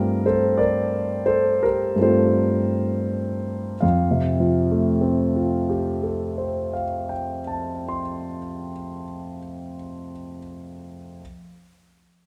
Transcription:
Already playing: G2 A3 C4 F4 G4 A#4
0.26 A4 C5
0.58 A#4 D5
1.26 A4 C5
1.63 G4 A#4
1.96 G2 A3 C4
2.00 F4 G4 A4 C5
3.80 F2 F5
4.11 C3
4.40 F3
4.71 A3
5.01 C4
5.36 F4
5.70 G4
6.03 A4
6.38 C5
6.73 F5
7.09 G5
7.47 A5
7.88 C6

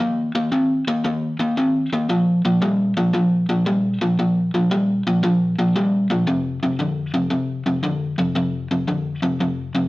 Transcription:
0.00 D#3 A#3
0.35 D#3 A#3
0.52 D#3 C4
0.88 D#3 A#3
1.04 D#3 A#3
1.39 D#3 A#3
1.57 D#3 C4
1.93 D#3 A#3
2.09 A#2 F3
2.45 A#2 F3
2.62 A#2 G3
2.97 A#2 F3
3.14 A#2 F3
3.49 A#2 F3
3.66 A#2 G3
4.01 A#2 F3
4.19 A#2 F3
4.54 A#2 F3
4.71 A#2 G3
5.07 A#2 F3
5.23 A#2 F3
5.59 A#2 F3
5.76 A#2 G3
6.10 A#2 F3
6.27 F2 C3
6.63 F2 C3
6.79 F2 D3
7.14 F2 C3
7.30 F2 C3
7.66 F2 C3
7.83 F2 D3
8.18 F2 C3
8.35 F2 C3
8.71 F2 C3
8.88 F2 D3
9.22 F2 C3
9.40 F2 C3
9.75 F2 C3

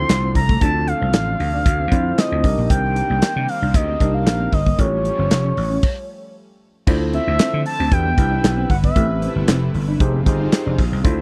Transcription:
Already playing: C3 D3 F3 A3 C4 E4 F4 C5 D5 C6
0.09 C2, snare, clap, closed hi-hat
0.22 C4
0.35 C2 A#5, muted clean electric guitar stroke, kick, open hi-hat
0.49 A3, kick
0.61 D2 C4 D4 F4 A4 A5, kick, closed hi-hat
0.87 F5, muted clean electric guitar stroke, closed hi-hat
1.01 C2 C4
1.13 A1, snare, clap, closed hi-hat
1.27 D4
1.39 D2, muted clean electric guitar stroke, open hi-hat
1.53 D4
1.66 D2, muted clean electric guitar stroke, kick, closed hi-hat
1.79 C4
1.91 F2 C4 D4 E4 F4 C5, kick, closed hi-hat
2.18 D#5, snare, clap, closed hi-hat
2.31 D2 C4
2.43 C2 D#3 G3 A#3 C4 D4 D#4 G4 A#4, kick, open hi-hat
2.57 A#1 A#3
2.69 C2 C4 G5, kick, closed hi-hat
2.96 muted clean electric guitar stroke, closed hi-hat
3.09 C2 A#3
3.22 snare, clap, closed hi-hat
3.36 C3 D4
3.48 F5, muted clean electric guitar stroke, open hi-hat
3.62 C2 D4
3.74 D2 D#5, muted clean electric guitar stroke, kick, closed hi-hat
3.88 C4
4.00 C2 D4 D#4 G4 A#4, kick, closed hi-hat
4.14 F5
4.26 A#1, snare, clap, closed hi-hat
4.40 C4
4.52 G1 D#5, muted clean electric guitar stroke, kick, open hi-hat
4.66 A#3, kick
4.78 A1 F3 G3 A3 C#4 F4 G4 A#4 C#5, kick, closed hi-hat
4.85 C#5
5.04 muted clean electric guitar stroke, closed hi-hat
5.18 G1 C4
5.31 F1, snare, clap, closed hi-hat
5.44 C#4
5.57 A1, muted clean electric guitar stroke, open hi-hat
5.70 C#4
5.83 kick, crash
6.87 D2 D3 F3 A3 C4 D4 E4 F4 A4 C5 E5, kick, crash
7.01 muted clean electric guitar stroke
7.13 C4 E5, closed hi-hat
7.27 D2
7.39 C4, snare, clap, closed hi-hat
7.54 D3
7.65 A5, muted clean electric guitar stroke, open hi-hat
7.79 D2 C4
7.91 E2 E3 D4 F#4 G4 B4 G5, kick, closed hi-hat
8.05 B3
8.18 C2 D4 E4 G4 B4, muted clean electric guitar stroke, kick, closed hi-hat
8.31 D4
8.44 B1, snare, clap, closed hi-hat
8.57 C4
8.70 G1 F#5, muted clean electric guitar stroke, kick, open hi-hat
8.83 B3 E5, kick
8.96 A1 C3 A3 C4 E4 G4 B4, kick, closed hi-hat
9.22 C4, closed hi-hat
9.36 G1
9.48 F1 C4, snare, clap, closed hi-hat
9.74 G1, muted clean electric guitar stroke, open hi-hat
9.88 D4
10.00 F1 D#3 G#3 C4 D#4 F4 G4 G#4 C5, kick, closed hi-hat
10.14 C4
10.26 G1 D#4 G4 G#4 C5, muted clean electric guitar stroke, kick, closed hi-hat
10.40 D#4
10.53 snare, clap, closed hi-hat
10.66 F1 D4
10.78 A#1, muted clean electric guitar stroke, kick, open hi-hat
10.92 C2 C4
11.04 D2 D3 F3 A3 C4 D4 E4 F4 A4 C5 E5, kick, closed hi-hat
11.18 muted clean electric guitar stroke

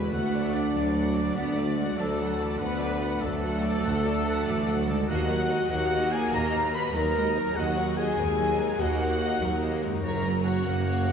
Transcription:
Already playing: D3 E3 G#3 E4 F#4 B4
0.02 D5
0.11 D2 A3 F#4 F#5
0.33 F#3 A4 D5
0.52 A3 D4 F#4 D5 F#5
0.73 D2 F#3 A4 D5
0.93 A3 F#4 F#5
1.15 F#3 A4 D5
1.35 D2 A3 B3 D4 F#4 D5 F#5
1.56 F#3 A3 A4 D5
1.76 G#3 A3 F#4 F#5
1.97 D2 F#3 A3 A4 D5
2.18 F#3 A3 F#4 F#5
2.39 E3 F#3 A4 D5
2.59 D2 D3 A3 B3 F#4 B4 F#5
2.80 F#3 A4 D5
3.01 A3 F#4 F#5
3.20 D2 F#3 A3 A4 D5
3.43 A3 F#4 F#5
3.63 F#3 A4 D5
3.83 D2 D3 A3 F#4 F#5
4.05 F#3 A4 D5
4.26 A3 F#4 F#5
4.45 D2 E3 F#3 A4 D5
4.67 F#3 A3 F#4 F#5
4.88 D#3 F#3 G#3 A4 D5
4.94 D#4
4.99 F#4
5.03 A#4
5.08 D#2 D#3 A#3 F#4 D#5 F#5
5.29 F#3 D#4 A#4
5.50 D#3 G#3 F#4 D#5
5.70 D#2 F#3 A#3 D#4 F#4 A#4 F#5
5.92 D#3 F#4 D#5
6.11 F#3 D#4 G#4 A#4 G#5
6.31 D#2 D#3 F#4 A#4 D#5 A#5
6.54 F#3 D#4 A#4
6.72 D#3 F#4 B4 D#5 B5
6.93 D#2 F#3 D#4 A#4 A#5
7.15 D#3 G#3 F#4 D#5
7.36 F#3 D#4 A#4
7.55 D#2 D#3 F#4 D#5 F#5
7.76 F#3 D#4 A#4
7.96 D#3 F#4 G#4 D#5 G#5
8.17 D#2 F#3 G#3 D#4 A#4
8.37 D#3 F#3 F#4 D#5
8.57 F#3 G#3 D#4 A#4
8.79 D#2 D#3 A#3 F#4 D#5 F#5
8.99 F#3 D#4 A#4
9.20 D#3 F#4 D#5
9.40 D#2 F#3 D#4 A#4
9.61 D#3 A#3 F#4 D#5
9.81 F#2 F#3 G#3 D#4 A#4
9.90 C#4
9.95 F#4
9.99 F#3 A#4
10.03 F#1 F#2 A#3 F#4 A#4 C#5 A#5
10.24 F#3 C#4 A#4
10.44 A#3 F#4 C#5 F#5
10.65 F#1 F#2 F#3 A#3 C#4 A#4
10.86 A#3 F#4 C#5
11.07 F#3 C#4 A#4

